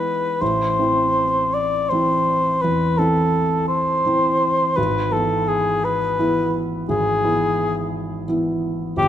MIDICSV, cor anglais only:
0, 0, Header, 1, 2, 480
1, 0, Start_track
1, 0, Tempo, 751880
1, 262, Time_signature, 12, 3, 24, 8
1, 1214, Tempo, 717703
1, 3614, Tempo, 695249
1, 6094, End_track
2, 0, Start_track
2, 0, Title_t, "Cor anglais"
2, 0, Program_c, 0, 69
2, 0, Note_on_c, 0, 71, 60
2, 265, Note_on_c, 0, 72, 63
2, 275, Note_off_c, 0, 71, 0
2, 984, Note_on_c, 0, 74, 59
2, 993, Note_off_c, 0, 72, 0
2, 1210, Note_on_c, 0, 72, 65
2, 1220, Note_off_c, 0, 74, 0
2, 1693, Note_on_c, 0, 71, 63
2, 1703, Note_off_c, 0, 72, 0
2, 1936, Note_on_c, 0, 69, 55
2, 1946, Note_off_c, 0, 71, 0
2, 2401, Note_off_c, 0, 69, 0
2, 2405, Note_on_c, 0, 72, 65
2, 3130, Note_on_c, 0, 71, 66
2, 3140, Note_off_c, 0, 72, 0
2, 3369, Note_on_c, 0, 69, 59
2, 3379, Note_off_c, 0, 71, 0
2, 3605, Note_on_c, 0, 68, 62
2, 3616, Note_off_c, 0, 69, 0
2, 3860, Note_on_c, 0, 71, 66
2, 3870, Note_off_c, 0, 68, 0
2, 4402, Note_off_c, 0, 71, 0
2, 4585, Note_on_c, 0, 68, 72
2, 5274, Note_off_c, 0, 68, 0
2, 6024, Note_on_c, 0, 67, 77
2, 6094, Note_off_c, 0, 67, 0
2, 6094, End_track
0, 0, End_of_file